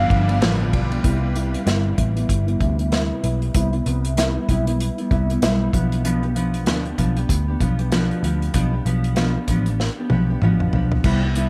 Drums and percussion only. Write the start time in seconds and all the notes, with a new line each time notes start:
0.10 kick, ride
0.29 ride
0.42 snare, ride
0.73 kick, ride
0.92 ride
1.04 kick, closed hi-hat
1.36 closed hi-hat
1.54 closed hi-hat
1.67 snare, closed hi-hat
1.98 kick, closed hi-hat
2.17 closed hi-hat
2.29 kick, closed hi-hat
2.48 closed hi-hat
2.61 kick, closed hi-hat
2.79 closed hi-hat
2.92 snare, closed hi-hat
3.24 closed hi-hat
3.42 closed hi-hat
3.54 kick, closed hi-hat
3.73 closed hi-hat
3.86 closed hi-hat
4.05 closed hi-hat
4.17 snare, closed hi-hat
4.49 kick, closed hi-hat
4.67 closed hi-hat
4.80 closed hi-hat
4.98 closed hi-hat
5.11 kick, closed hi-hat
5.30 closed hi-hat
5.42 snare, closed hi-hat
5.73 kick, closed hi-hat
5.92 closed hi-hat
6.05 closed hi-hat
6.23 closed hi-hat
6.36 closed hi-hat
6.54 closed hi-hat
6.66 snare, closed hi-hat
6.85 closed hi-hat
6.98 kick, closed hi-hat
7.17 closed hi-hat
7.29 kick, closed hi-hat
7.60 kick, closed hi-hat
7.79 closed hi-hat
7.92 snare, closed hi-hat
8.11 closed hi-hat
8.24 closed hi-hat
8.42 closed hi-hat
8.54 kick, closed hi-hat
8.86 closed hi-hat
9.04 closed hi-hat
9.16 snare, closed hi-hat
9.48 kick, closed hi-hat
9.66 closed hi-hat
9.80 snare
10.10 high tom
10.42 mid tom
10.60 mid tom
10.73 floor tom
10.92 floor tom
11.04 kick, crash
11.35 closed hi-hat